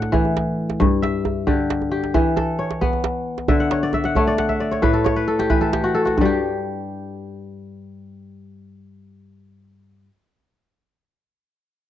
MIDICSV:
0, 0, Header, 1, 3, 480
1, 0, Start_track
1, 0, Tempo, 447928
1, 856, Time_signature, 12, 3, 24, 8
1, 12746, End_track
2, 0, Start_track
2, 0, Title_t, "Kora"
2, 0, Program_c, 0, 46
2, 0, Note_on_c, 0, 45, 88
2, 0, Note_on_c, 0, 57, 74
2, 0, Note_on_c, 0, 62, 59
2, 0, Note_on_c, 0, 74, 63
2, 0, Note_on_c, 0, 78, 65
2, 131, Note_on_c, 0, 52, 79
2, 836, Note_off_c, 0, 57, 0
2, 846, Note_off_c, 0, 74, 0
2, 856, Note_on_c, 0, 43, 80
2, 910, Note_off_c, 0, 45, 0
2, 910, Note_off_c, 0, 52, 0
2, 920, Note_off_c, 0, 78, 0
2, 980, Note_off_c, 0, 62, 0
2, 1097, Note_on_c, 0, 76, 71
2, 1574, Note_on_c, 0, 50, 72
2, 1575, Note_on_c, 0, 67, 65
2, 2048, Note_off_c, 0, 67, 0
2, 2052, Note_on_c, 0, 67, 70
2, 2205, Note_off_c, 0, 76, 0
2, 2296, Note_on_c, 0, 52, 94
2, 2350, Note_off_c, 0, 43, 0
2, 2350, Note_off_c, 0, 50, 0
2, 2533, Note_on_c, 0, 69, 68
2, 2772, Note_on_c, 0, 73, 63
2, 3015, Note_on_c, 0, 59, 74
2, 3565, Note_off_c, 0, 67, 0
2, 3733, Note_on_c, 0, 50, 83
2, 3733, Note_on_c, 0, 76, 72
2, 3790, Note_off_c, 0, 52, 0
2, 3798, Note_off_c, 0, 73, 0
2, 3858, Note_on_c, 0, 78, 69
2, 3945, Note_off_c, 0, 69, 0
2, 3981, Note_on_c, 0, 73, 64
2, 4103, Note_on_c, 0, 74, 66
2, 4217, Note_off_c, 0, 76, 0
2, 4221, Note_on_c, 0, 76, 73
2, 4336, Note_off_c, 0, 78, 0
2, 4340, Note_on_c, 0, 78, 73
2, 4458, Note_off_c, 0, 73, 0
2, 4460, Note_on_c, 0, 57, 78
2, 4462, Note_on_c, 0, 73, 63
2, 4527, Note_off_c, 0, 74, 0
2, 4580, Note_on_c, 0, 74, 75
2, 4694, Note_off_c, 0, 78, 0
2, 4698, Note_on_c, 0, 78, 71
2, 4807, Note_off_c, 0, 76, 0
2, 4811, Note_on_c, 0, 76, 65
2, 4928, Note_off_c, 0, 74, 0
2, 4932, Note_on_c, 0, 74, 68
2, 4997, Note_off_c, 0, 73, 0
2, 5012, Note_off_c, 0, 59, 0
2, 5051, Note_on_c, 0, 73, 61
2, 5167, Note_on_c, 0, 45, 86
2, 5172, Note_on_c, 0, 71, 77
2, 5230, Note_off_c, 0, 50, 0
2, 5287, Note_on_c, 0, 69, 72
2, 5400, Note_off_c, 0, 73, 0
2, 5404, Note_on_c, 0, 73, 67
2, 5468, Note_off_c, 0, 74, 0
2, 5529, Note_off_c, 0, 71, 0
2, 5533, Note_on_c, 0, 71, 72
2, 5650, Note_off_c, 0, 69, 0
2, 5654, Note_on_c, 0, 69, 70
2, 5732, Note_off_c, 0, 78, 0
2, 5778, Note_on_c, 0, 67, 76
2, 5887, Note_off_c, 0, 71, 0
2, 5891, Note_on_c, 0, 71, 67
2, 5892, Note_on_c, 0, 52, 66
2, 5919, Note_off_c, 0, 76, 0
2, 6007, Note_off_c, 0, 69, 0
2, 6011, Note_on_c, 0, 69, 70
2, 6135, Note_off_c, 0, 67, 0
2, 6139, Note_on_c, 0, 67, 71
2, 6255, Note_on_c, 0, 66, 66
2, 6366, Note_off_c, 0, 69, 0
2, 6370, Note_on_c, 0, 69, 78
2, 6482, Note_off_c, 0, 66, 0
2, 6486, Note_on_c, 0, 66, 65
2, 6550, Note_off_c, 0, 67, 0
2, 6601, Note_off_c, 0, 57, 0
2, 6617, Note_on_c, 0, 43, 72
2, 6633, Note_off_c, 0, 73, 0
2, 6657, Note_on_c, 0, 55, 75
2, 6670, Note_off_c, 0, 45, 0
2, 6670, Note_off_c, 0, 52, 0
2, 6701, Note_on_c, 0, 67, 76
2, 6766, Note_off_c, 0, 66, 0
2, 7208, Note_off_c, 0, 71, 0
2, 7782, Note_off_c, 0, 69, 0
2, 10784, Note_off_c, 0, 43, 0
2, 10824, Note_off_c, 0, 55, 0
2, 10869, Note_off_c, 0, 67, 0
2, 12746, End_track
3, 0, Start_track
3, 0, Title_t, "Djembe"
3, 23, Note_on_c, 9, 62, 62
3, 130, Note_off_c, 9, 62, 0
3, 145, Note_on_c, 9, 64, 72
3, 252, Note_off_c, 9, 64, 0
3, 267, Note_on_c, 9, 63, 56
3, 374, Note_off_c, 9, 63, 0
3, 392, Note_on_c, 9, 62, 71
3, 500, Note_off_c, 9, 62, 0
3, 746, Note_on_c, 9, 62, 57
3, 853, Note_off_c, 9, 62, 0
3, 873, Note_on_c, 9, 63, 68
3, 873, Note_on_c, 9, 64, 74
3, 980, Note_off_c, 9, 63, 0
3, 980, Note_off_c, 9, 64, 0
3, 1108, Note_on_c, 9, 62, 62
3, 1215, Note_off_c, 9, 62, 0
3, 1340, Note_on_c, 9, 63, 72
3, 1447, Note_off_c, 9, 63, 0
3, 1580, Note_on_c, 9, 64, 65
3, 1688, Note_off_c, 9, 64, 0
3, 1825, Note_on_c, 9, 62, 69
3, 1932, Note_off_c, 9, 62, 0
3, 1947, Note_on_c, 9, 62, 22
3, 1947, Note_on_c, 9, 63, 55
3, 2054, Note_off_c, 9, 62, 0
3, 2054, Note_off_c, 9, 63, 0
3, 2181, Note_on_c, 9, 62, 52
3, 2289, Note_off_c, 9, 62, 0
3, 2302, Note_on_c, 9, 64, 75
3, 2409, Note_off_c, 9, 64, 0
3, 2541, Note_on_c, 9, 62, 61
3, 2541, Note_on_c, 9, 63, 61
3, 2648, Note_off_c, 9, 62, 0
3, 2648, Note_off_c, 9, 63, 0
3, 2899, Note_on_c, 9, 62, 58
3, 3006, Note_off_c, 9, 62, 0
3, 3023, Note_on_c, 9, 64, 66
3, 3130, Note_off_c, 9, 64, 0
3, 3141, Note_on_c, 9, 63, 58
3, 3248, Note_off_c, 9, 63, 0
3, 3257, Note_on_c, 9, 62, 74
3, 3365, Note_off_c, 9, 62, 0
3, 3620, Note_on_c, 9, 62, 51
3, 3727, Note_off_c, 9, 62, 0
3, 3733, Note_on_c, 9, 62, 21
3, 3733, Note_on_c, 9, 63, 57
3, 3733, Note_on_c, 9, 64, 69
3, 3840, Note_off_c, 9, 62, 0
3, 3840, Note_off_c, 9, 63, 0
3, 3840, Note_off_c, 9, 64, 0
3, 3854, Note_on_c, 9, 62, 23
3, 3961, Note_off_c, 9, 62, 0
3, 3975, Note_on_c, 9, 62, 70
3, 4082, Note_off_c, 9, 62, 0
3, 4210, Note_on_c, 9, 63, 67
3, 4317, Note_off_c, 9, 63, 0
3, 4328, Note_on_c, 9, 62, 50
3, 4435, Note_off_c, 9, 62, 0
3, 4453, Note_on_c, 9, 62, 20
3, 4453, Note_on_c, 9, 64, 66
3, 4560, Note_off_c, 9, 62, 0
3, 4560, Note_off_c, 9, 64, 0
3, 4697, Note_on_c, 9, 62, 73
3, 4804, Note_off_c, 9, 62, 0
3, 4812, Note_on_c, 9, 63, 54
3, 4919, Note_off_c, 9, 63, 0
3, 4935, Note_on_c, 9, 62, 22
3, 5042, Note_off_c, 9, 62, 0
3, 5062, Note_on_c, 9, 62, 48
3, 5169, Note_off_c, 9, 62, 0
3, 5180, Note_on_c, 9, 64, 72
3, 5287, Note_off_c, 9, 64, 0
3, 5423, Note_on_c, 9, 62, 60
3, 5423, Note_on_c, 9, 63, 65
3, 5530, Note_off_c, 9, 62, 0
3, 5530, Note_off_c, 9, 63, 0
3, 5541, Note_on_c, 9, 62, 18
3, 5649, Note_off_c, 9, 62, 0
3, 5784, Note_on_c, 9, 62, 55
3, 5891, Note_off_c, 9, 62, 0
3, 5898, Note_on_c, 9, 62, 24
3, 5898, Note_on_c, 9, 64, 74
3, 6005, Note_off_c, 9, 62, 0
3, 6005, Note_off_c, 9, 64, 0
3, 6025, Note_on_c, 9, 62, 21
3, 6025, Note_on_c, 9, 63, 61
3, 6132, Note_off_c, 9, 62, 0
3, 6132, Note_off_c, 9, 63, 0
3, 6142, Note_on_c, 9, 62, 76
3, 6249, Note_off_c, 9, 62, 0
3, 6506, Note_on_c, 9, 62, 54
3, 6613, Note_off_c, 9, 62, 0
3, 6619, Note_on_c, 9, 64, 71
3, 6726, Note_off_c, 9, 64, 0
3, 12746, End_track
0, 0, End_of_file